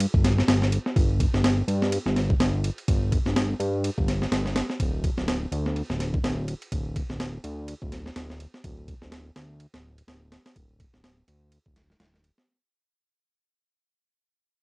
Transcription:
0.00 ride
0.14 analog synth bass G1, kick
0.24 snare, ride
0.38 snare
0.48 analog synth bass G1, snare, ride
0.62 snare
0.72 ride
0.86 snare
0.96 analog synth bass G1, kick, ride
1.20 kick, ride
1.34 analog synth bass G1, snare
1.44 snare, ride
1.68 analog synth bass G2, ride
1.82 snare
1.92 ride
2.06 analog synth bass G1, snare
2.16 snare, ride
2.30 kick
2.40 analog synth bass G1, snare, ride
2.64 ride
2.78 ride
2.88 analog synth bass G1, kick, ride
3.12 kick, ride
3.26 analog synth bass G1, snare
3.36 snare, ride
3.60 analog synth bass G2, ride
3.84 ride
3.98 analog synth bass G1, kick
4.08 snare, ride
4.22 snare
4.32 analog synth bass G1, snare, ride
4.46 snare
4.56 snare, ride
4.70 snare
4.80 analog synth bass D1, kick, ride
5.04 kick, ride
5.18 analog synth bass D1, snare
5.28 snare, ride
5.52 analog synth bass D2, ride
5.66 snare
5.76 ride
5.90 analog synth bass D1, snare
6.00 snare, ride
6.14 kick
6.24 analog synth bass D1, snare, ride
6.48 ride
6.62 ride
6.72 analog synth bass D1, kick, ride
6.96 kick, ride
7.10 analog synth bass D1, snare
7.20 snare, ride
7.44 analog synth bass D2, ride
7.68 ride
7.82 analog synth bass D1, kick
7.92 snare, ride
8.06 snare
8.16 analog synth bass D1, snare, ride
8.30 snare
8.40 ride
8.54 snare
8.64 analog synth bass D1, kick, ride
8.88 kick, ride
9.02 analog synth bass D1, snare
9.12 snare, ride
9.36 analog synth bass D2, snare, ride
9.60 ride
9.74 analog synth bass D1, snare, ride
9.98 ride
10.08 analog synth bass D1, snare, ride
10.32 snare, ride
10.46 snare, ride
10.56 analog synth bass D1, kick, ride
10.80 kick, ride
10.94 analog synth bass D1, snare
11.04 snare, ride
11.28 analog synth bass D2, ride
11.52 ride
11.66 analog synth bass D1, kick
11.76 snare, ride
11.90 snare
12.00 analog synth bass D1, snare, ride
12.14 snare
12.24 ride
12.38 snare

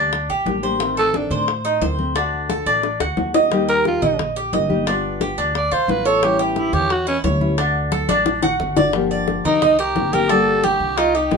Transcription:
Already playing: upright bass D2, nylon-string guitar D3 G3 A#3 D4 G4, cuban tres D4
0.12 muted nylon-string guitar stroke, high bongo, high conga
0.29 upright bass A#1, cuban tres G4, high bongo, high conga
0.46 upright bass A1, nylon-string guitar G3 A#3 D4 G4, high bongo, low bongo, high conga
0.63 nylon-string guitar G3 A#3 D4 G4, cuban tres C5, high bongo
0.79 nylon-string guitar D#3 A3 C4, high bongo, high conga
0.97 cuban tres A4, alto saxophone A4, high conga
1.14 alto saxophone D4, high bongo, high conga
1.30 upright bass A2, cuban tres C5, high bongo, high conga, low conga
1.48 muted nylon-string guitar stroke, high bongo
1.65 cuban tres D#4, high bongo, high conga
1.81 upright bass D2, nylon-string guitar D#3 A3 C4, cuban tres C5, high bongo, low bongo, high conga
1.99 nylon-string guitar A3 C4, high bongo, high conga
2.15 nylon-string guitar D3 A3 D4 F#4, cuban tres D4, high bongo
2.33 high conga
2.50 cuban tres A4, high bongo, high conga
2.66 upright bass A1, cuban tres D4, high bongo, high conga
2.83 muted nylon-string guitar stroke, high bongo, high conga
3.00 upright bass D2, cuban tres F#4, high bongo, high conga
3.17 upright bass D#2, nylon-string guitar D3 A3 D4 F#4, low bongo, high conga
3.34 nylon-string guitar A3 D4 F#4, cuban tres D#5, low bongo
3.50 nylon-string guitar D#3 G3 A#3 D#4 G4, high bongo, high conga
3.68 cuban tres A#4, alto saxophone A#4, high conga
3.85 alto saxophone F4, high bongo, high conga
4.02 upright bass A#1, cuban tres D#5, high bongo, high conga, low conga
4.19 muted nylon-string guitar stroke, high bongo, high conga, low conga
4.36 cuban tres G4, high bongo, high conga
4.53 upright bass G1, nylon-string guitar G3 A#3 D#4 G4, cuban tres D#5, high bongo, low bongo, high conga
4.69 nylon-string guitar G3 A#3 D#4 G4, high bongo, high conga
4.86 nylon-string guitar G3 B3 F4, cuban tres D4, high bongo, high conga
5.04 high conga
5.21 cuban tres G4, high bongo, high conga
5.38 upright bass D2, cuban tres D4, high bongo, high conga
5.54 alto saxophone D5, muted nylon-string guitar stroke, high bongo, high conga
5.71 upright bass B1, cuban tres F4, alto saxophone C5, high bongo, high conga
5.88 upright bass A1, nylon-string guitar G3 B3 F4, alto saxophone B4, high bongo, low bongo, high conga
6.05 nylon-string guitar B3 F4, alto saxophone A4, cuban tres C#5, high bongo
6.21 nylon-string guitar E3 G3 C#4 E4, alto saxophone G4, high bongo, high conga
6.39 alto saxophone B3, cuban tres G4, high conga
6.56 alto saxophone E4, high bongo, high conga
6.73 upright bass E2, alto saxophone G4, cuban tres C#5, high bongo, high conga, low conga
6.89 alto saxophone F#4, muted nylon-string guitar stroke, high bongo, high conga
7.07 alto saxophone C#4, cuban tres E4, high bongo, high conga
7.23 upright bass D2, nylon-string guitar E3 G3 C#4 E4, cuban tres C#5, high bongo, low bongo, high conga
7.41 nylon-string guitar G3 C#4 E4, high bongo, high conga
7.57 nylon-string guitar D3 A3 D4 F#4, cuban tres D4, high bongo, high conga
7.75 high conga
7.92 cuban tres A4, high bongo, high conga
8.09 upright bass A1, cuban tres D4, high bongo, high conga
8.25 muted nylon-string guitar stroke, low bongo, high conga
8.43 cuban tres F#4, low bongo, low conga
8.59 upright bass G1, nylon-string guitar D3 A3 D4 F#4, low conga
8.76 nylon-string guitar A3 D4 F#4, cuban tres D5, low bongo, low conga
8.93 nylon-string guitar D3 F3 A#3 D4 G4, high bongo, high conga
9.11 cuban tres D5, high conga
9.28 high bongo, high conga
9.45 upright bass C2, alto saxophone D#4, cuban tres A#4, high bongo, high conga, low conga
9.62 cuban tres D#5, muted nylon-string guitar stroke, high bongo, high conga, low conga
9.79 alto saxophone G4, cuban tres A#4, high bongo, high conga
9.95 upright bass G1, nylon-string guitar D#3 A#3 C4 G4, high bongo, low bongo, high conga
10.13 nylon-string guitar D#3 A#3 C4 G4, cuban tres G4, alto saxophone A#4, high bongo, high conga
10.29 nylon-string guitar D3 G3 A#3 D4 G4, cuban tres D4, alto saxophone A4, high bongo, high conga
10.48 high conga
10.64 cuban tres G4, alto saxophone G4, high bongo, high conga
10.80 upright bass C2, high bongo, high conga
10.97 cuban tres D#4, alto saxophone F4, muted nylon-string guitar stroke, high bongo, high conga
11.14 alto saxophone D#4, cuban tres G4, high bongo, high conga
11.31 upright bass G1, nylon-string guitar D#3 A#3 C4 G4, high bongo, low bongo, high conga

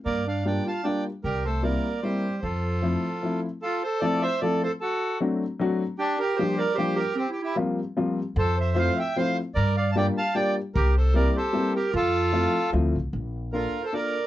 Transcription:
0.05 upright bass G2, clarinet A#3, accordion A#4 D5
0.27 clarinet D4, accordion D5 F5
0.45 upright piano G3 A#3 D4 F4, clarinet D4, accordion D5 G5
0.66 clarinet F4, accordion F5 A5
0.84 upright piano G3 A#3 D4 F4, clarinet D4, accordion D5 G5
1.24 upright bass C2, clarinet G3, accordion G4 A#4
1.45 clarinet A3, accordion A4 C5
1.63 upright piano G3 A#3 C4 E4, clarinet A#3, accordion A#4 D5
2.03 upright piano G3 A#3 C4 E4, clarinet G3, accordion G4 C5
2.42 upright bass F2, clarinet F3, accordion F4 A4
2.82 upright piano F3 A3 C4 E4
3.23 upright piano F3 A3 C4 E4
3.62 accordion F4 A4, clarinet F4
3.84 accordion A4 C5, clarinet A4
4.00 upright piano F3 A3 C4 E4 F4, accordion A4 D5, clarinet A4
4.22 accordion C5 E5, clarinet C5
4.41 upright piano F3 A3 C4 E4 F4, accordion A4 D5, clarinet A4
4.63 clarinet A4, accordion A4 C5
4.81 accordion F#4 A4, clarinet F#4
5.20 upright piano F#3 A3 C4 D4 F#4
5.60 upright piano F#3 A3 C4 D4 F#4
5.98 clarinet D4, accordion D4 G4
6.19 clarinet G4, accordion G4 A#4
6.36 upright piano F3 G3 A#3, clarinet G4, accordion G4 C5
6.40 upright piano D4 F4
6.57 clarinet A#4, accordion A#4 D5
6.75 upright piano F3 G3 A#3 D4, clarinet G4, accordion G4 C5
6.79 upright piano F4
6.96 clarinet G4, accordion G4 A#4
7.15 clarinet C4, accordion C4 G4
7.29 clarinet E4, accordion G4
7.41 clarinet E4, accordion E4 G4
7.56 upright piano F3 G3 A#3 C4 F4
7.97 upright piano F3 G3 A#3 C4 F4
8.36 upright bass F2, clarinet A4, accordion A4 C5
8.57 clarinet C5, accordion C5 E5
8.75 upright piano F3 A3 C4 E4 F4, clarinet C5, accordion C5 F5
8.96 clarinet E5, accordion E5 G5
9.16 upright piano F3 A3 C4 E4 F4, clarinet C5, accordion C5 F5
9.55 upright bass G2, accordion A#4 D5, clarinet A#4
9.77 accordion D5 F5, clarinet D5
9.92 clarinet F5, accordion A5
9.96 upright piano G3 A#3 D4 F4 G4, clarinet D5, accordion D5 G5
10.18 accordion F5 A5, clarinet F5
10.35 upright piano G3 A#3 D4 F4 G4, accordion D5 G5, clarinet D5
10.75 upright bass C2, clarinet G4, accordion G4 A#4
10.97 clarinet A4, accordion A4 C5
11.14 upright piano G3 A#3 C4 E4 G4, accordion A#4 D5, clarinet A#4
11.36 clarinet G4, accordion A4 C5
11.53 upright piano G3 A#3 C4 E4 G4
11.75 accordion G4 A#4, clarinet G4
11.93 upright bass F2, clarinet F4, accordion F4 A4
12.32 upright piano F3 A3 C4 E4 F4
12.72 upright bass D2, upright piano F3 A3 C4 E4 F4
12.95 upright bass C2
13.13 upright bass A#1
13.53 upright piano A#3 D4 F4 A4, clarinet F4, accordion F4 A#4
13.83 clarinet A4, accordion A4 C5
13.93 upright piano A#3 D4 F4 A4, clarinet A#4, accordion A#4 D5

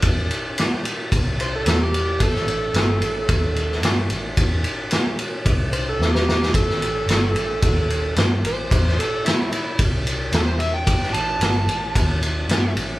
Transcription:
0.02 picked electric bass E2, kick, ride
0.31 ride
0.58 snare, ride
0.85 ride
1.12 picked electric bass C2, kick, ride
1.40 electric slide guitar C5, ride
1.55 electric slide guitar A4
1.66 picked electric bass E2, snare, ride
1.83 electric slide guitar G4
1.94 ride
2.20 picked electric bass A1, electric slide guitar A4, kick, ride
2.35 snare
2.47 picked electric bass A1, ride
2.74 picked electric bass G1, snare, ride
3.01 picked electric bass A1, ride
3.29 picked electric bass D#2, kick, ride
3.56 ride
3.72 snare
3.82 picked electric bass G2, snare, ride
4.10 picked electric bass A1, ride
4.37 picked electric bass E2, kick, ride
4.64 ride
4.91 snare, ride
5.19 ride
5.45 picked electric bass C2, kick, ride
5.73 electric slide guitar C5, ride
5.89 electric slide guitar A4
5.99 picked electric bass E2, snare
6.14 electric slide guitar G4, snare
6.29 snare
6.43 snare
6.54 picked electric bass A1, electric slide guitar A4, kick, ride
6.70 snare
6.80 picked electric bass A1, ride
7.06 picked electric bass G1, ride
7.10 snare
7.34 picked electric bass A1, ride
7.62 picked electric bass D#2, kick, ride
7.90 ride
8.16 picked electric bass G2, snare, ride
8.43 picked electric bass A1, electric slide guitar C5, ride
8.71 picked electric bass E2, kick, ride
8.88 snare
8.99 electric slide guitar A4, ride
9.25 electric slide guitar E4, snare, ride
9.52 electric slide guitar E4, ride
9.79 picked electric bass C2, kick, ride
10.07 ride
10.32 picked electric bass E2, electric slide guitar A4, snare, ride
10.46 electric slide guitar C5
10.59 electric slide guitar E5, ride
10.74 electric slide guitar G5
10.86 picked electric bass A1, kick, ride
11.03 snare
11.13 picked electric bass A1, electric slide guitar A5, ride
11.40 picked electric bass G1, snare, ride
11.67 picked electric bass A1, ride
11.95 picked electric bass D#2, kick, ride
12.23 ride
12.49 picked electric bass G2, snare, ride
12.77 picked electric bass A1, ride

